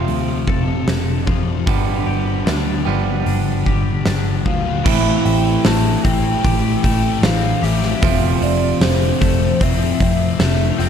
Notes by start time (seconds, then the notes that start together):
Already playing: F2 C3 F3 A3 C4 F4 A4
0.08 D2, open hi-hat
0.47 F1 A4, kick
0.88 F1, snare, open hi-hat
1.26 F2 C3 F3, kick
1.66 G1 G2 D3 F3 G3 B3 G4, kick, open hi-hat
2.07 G1 G4
2.46 D2 D4, snare, open hi-hat
2.85 G1 G2 D3 F3 G3 B3 G4
3.26 G1 D4, open hi-hat
3.66 G1 G4, kick
4.05 G1 D4, snare, open hi-hat
4.45 D2 G2 D3 F3 G3 F5, kick
4.84 A1 A2 E3 A3 C4 E4 E5, kick, crash
5.25 A1 E3 A3 G5, open hi-hat
5.64 A1 A2 E3 A3 A5, snare, open hi-hat
6.03 A1 A3 C4 G5, kick, open hi-hat
6.07 E3
6.44 A1 A2 E3 A3 G4, kick, open hi-hat
6.82 A1 E3 A3 G5, kick, open hi-hat
7.22 A1 A2 E3 A3 C4 F5, snare, open hi-hat
7.62 A1 E3 A3 G4 E5, snare, open hi-hat
7.83 snare
8.02 F1 F2 C3 F3 A3 C4 F4, kick, open hi-hat
8.41 F1 C3 F3 D5, open hi-hat
8.80 F1 F2 C3 F3 C5, snare, open hi-hat
9.21 F1 C3 F3 A3 C5, kick, open hi-hat
9.60 F1 F2 C3 F3 C4 E5, kick, open hi-hat
10.00 F2 C3 F3, kick, open hi-hat
10.39 F1 F2 C3 F3 A3 E5, snare, open hi-hat
10.77 F1 C3 F3 C4 G5, snare, open hi-hat